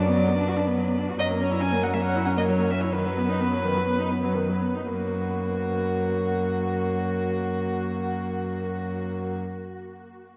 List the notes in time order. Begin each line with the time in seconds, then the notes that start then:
Already playing: F#2 B4 D5
0.08 B3
0.17 F#3
0.28 B3
0.38 D4
0.48 F#4
0.57 D4
0.67 B3
0.77 F#3
0.88 B3
0.98 D4
1.09 F#4
1.19 F#2 F#3 A#4 D#5
1.30 A#3
1.40 C#4 C#5
1.51 E4
1.61 C#4 G#5
1.72 A#3
1.83 F#3 F#5
1.94 A#3 E5
2.04 C#4 F#5
2.15 E4
2.25 C#4 F#5
2.37 A#3 D#5
2.48 F#3 C#5
2.59 A#3
2.71 C#4 E5
2.81 E4 C#5
2.93 D#3 B4
3.05 F#3
3.17 B3
3.28 D#4
3.40 B3
3.52 F#3
3.64 D#3
3.76 F#3
3.87 B3
3.99 D#4
4.10 B3
4.23 F#3
4.35 D#3
4.48 F#3
4.61 B3
4.75 D#4
4.88 F#2 A#3 F#4